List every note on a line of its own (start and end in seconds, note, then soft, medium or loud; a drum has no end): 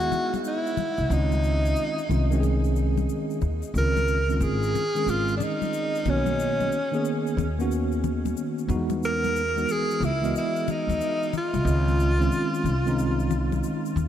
0.00 0.75 G#3 medium
0.00 0.75 B3 medium
0.00 0.76 D#4 medium
0.00 0.74 E4 medium
0.00 0.42 F#4 loud
0.00 0.76 G#4 medium
0.00 shaker soft
0.12 low conga medium
0.12 shaker soft
0.34 high conga medium
0.34 shaker soft
0.45 1.15 E4 loud
0.45 shaker medium
0.67 shaker soft
0.77 high conga medium
0.77 low conga medium
0.77 shaker soft
0.98 1.09 C2 medium
0.98 shaker soft
1.10 1.72 C#2 loud
1.10 1.99 D#3 medium
1.10 1.99 G#3 medium
1.10 2.00 C4 medium
1.10 2.00 C#4 medium
1.10 2.44 D#4 loud
1.10 2.00 F4 medium
1.10 shaker medium
1.32 high conga soft
1.32 shaker soft
1.44 shaker soft
1.65 shaker soft
1.76 shaker medium
1.98 shaker soft
2.09 3.05 C2 medium
2.09 2.27 D#3 medium
2.09 2.28 G#3 medium
2.09 2.28 C4 medium
2.09 2.28 C#4 medium
2.09 2.29 F4 medium
2.09 low conga medium
2.09 shaker soft
2.30 3.39 D#3 medium
2.30 3.39 G#3 medium
2.30 3.39 C4 medium
2.30 3.40 C#4 medium
2.30 2.37 F#4 medium
2.30 shaker soft
2.40 3.43 G#4 loud
2.40 high conga soft
2.40 shaker medium
2.64 shaker soft
2.76 shaker soft
2.98 high conga medium
2.98 shaker soft
3.09 shaker medium
3.30 shaker soft
3.42 3.61 D#2 medium
3.42 low conga medium
3.42 shaker soft
3.62 shaker soft
3.74 4.42 C#2 medium
3.74 4.19 D#3 medium
3.74 4.19 G#3 medium
3.74 4.20 C4 medium
3.74 4.20 C#4 medium
3.74 4.20 F4 medium
3.74 4.38 A#4 loud
3.74 shaker medium
3.97 high conga soft
3.97 shaker soft
4.08 shaker soft
4.28 4.81 D#3 medium
4.28 4.82 G#3 medium
4.28 4.82 C4 medium
4.28 4.82 C#4 medium
4.28 4.83 F4 medium
4.28 shaker soft
4.38 4.71 G#1 medium
4.38 4.45 A#4 medium
4.38 shaker medium
4.43 5.11 G#4 loud
4.63 shaker soft
4.75 low conga medium
4.75 shaker soft
4.95 6.03 D#3 medium
4.95 6.03 G#3 medium
4.95 6.03 C4 medium
4.95 6.04 C#4 medium
4.95 6.04 G#4 medium
4.95 shaker soft
5.06 5.37 G#1 medium
5.06 5.36 F4 medium
5.06 shaker medium
5.28 shaker soft
5.37 5.45 D4 medium
5.37 low conga medium
5.37 shaker soft
5.43 6.11 D#4 loud
5.62 high conga medium
5.62 shaker soft
5.73 shaker medium
5.95 shaker soft
6.05 6.67 B1 medium
6.05 6.14 C#3 medium
6.05 6.77 A#3 medium
6.05 6.77 B3 medium
6.05 6.77 C#4 medium
6.05 7.39 C#4 medium
6.05 6.78 F#4 medium
6.05 low conga medium
6.05 shaker soft
6.12 6.79 D#3 medium
6.26 high conga medium
6.26 shaker soft
6.39 shaker medium
6.61 high conga soft
6.61 shaker soft
6.72 shaker soft
6.92 7.45 D#3 medium
6.92 7.45 A#3 medium
6.92 7.46 B3 medium
6.92 7.46 C#4 medium
6.92 7.46 G#4 medium
6.92 shaker soft
7.05 shaker medium
7.27 shaker soft
7.37 8.32 D#2 medium
7.37 low conga medium
7.37 shaker soft
7.59 8.66 D#3 medium
7.59 8.66 A#3 medium
7.59 8.67 B3 medium
7.59 8.67 C#4 medium
7.59 8.68 F#4 loud
7.59 shaker soft
7.71 shaker medium
7.92 shaker soft
8.04 low conga medium
8.04 shaker soft
8.26 high conga medium
8.26 shaker soft
8.37 shaker medium
8.58 shaker soft
8.68 9.64 E2 loud
8.68 9.39 E3 medium
8.68 8.77 F#3 medium
8.68 9.40 B3 medium
8.68 9.40 D#4 medium
8.68 9.41 F#4 loud
8.68 low conga medium
8.68 shaker soft
8.75 9.43 G#3 medium
8.90 high conga medium
8.90 shaker soft
9.03 9.73 A#4 loud
9.03 shaker medium
9.24 high conga soft
9.24 shaker soft
9.36 shaker soft
9.55 10.09 E3 medium
9.55 10.09 G#3 medium
9.55 10.10 B3 medium
9.55 10.10 D#4 medium
9.55 10.10 F#4 medium
9.55 shaker soft
9.69 10.06 G#4 loud
9.69 shaker medium
9.91 shaker soft
10.00 10.31 C#2 medium
10.00 low conga medium
10.00 shaker soft
10.05 10.36 E4 medium
10.22 11.30 E3 medium
10.22 11.30 G#3 medium
10.22 11.31 B3 medium
10.22 11.31 F#4 medium
10.22 11.31 D#5 medium
10.22 shaker soft
10.36 10.73 E4 medium
10.36 shaker medium
10.56 shaker soft
10.68 11.35 D#4 loud
10.68 low conga medium
10.68 shaker soft
10.88 10.99 D#2 medium
10.88 high conga medium
10.88 shaker soft
11.01 shaker medium
11.23 shaker soft
11.33 13.95 F4 loud
11.33 low conga medium
11.33 shaker soft
11.54 11.64 C2 medium
11.54 high conga medium
11.54 shaker soft
11.65 12.27 C#2 loud
11.65 12.10 D#3 medium
11.65 12.10 G#3 medium
11.65 12.11 C4 medium
11.65 12.11 C#4 medium
11.65 12.11 F4 medium
11.65 shaker medium
11.88 high conga soft
11.88 shaker soft
12.00 shaker medium
12.18 12.72 D#3 medium
12.18 12.72 G#3 medium
12.18 12.73 C4 medium
12.18 12.73 C#4 medium
12.18 12.74 F4 medium
12.18 shaker soft
12.32 shaker medium
12.54 shaker soft
12.64 13.59 C2 medium
12.64 low conga medium
12.64 shaker soft
12.86 13.94 D#3 medium
12.86 13.94 G#3 medium
12.86 13.94 C4 medium
12.86 13.95 C#4 medium
12.86 13.95 D#4 loud
12.86 shaker soft
12.99 shaker medium
13.20 shaker soft
13.31 low conga medium
13.31 shaker soft
13.52 high conga medium
13.52 shaker soft
13.63 shaker medium
13.85 shaker soft
13.96 14.08 D#2 medium
13.96 low conga medium
13.96 shaker soft